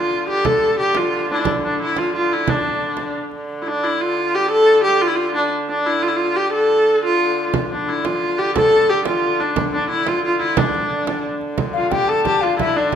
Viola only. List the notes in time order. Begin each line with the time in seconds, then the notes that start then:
Already playing: F4
0.29 G4
0.46 A4
0.79 G4
0.97 F4
1.31 D4 E4
1.40 D4
1.65 D4
1.82 E4
1.98 F4
2.16 F4
2.32 E4
2.49 D4
3.62 E4
3.67 D4
3.83 E4
4.01 F4
4.35 G4
4.51 A4
4.84 G4
5.01 F4
5.08 E4
5.15 F4
5.36 D4
5.70 D4
5.86 E4
6.02 F4
6.08 E4
6.16 F4
6.36 G4
6.53 A4
7.05 F4
7.72 D4
7.89 E4
8.05 F4
8.38 G4
8.56 A4
8.89 G4
9.06 F4
9.40 D4
9.74 D4
9.90 E4
10.08 F4
10.25 F4
10.42 E4
10.58 D4
11.77 F4
11.94 G4
12.09 A4
12.27 G4
12.43 F4
12.60 E4
12.77 D4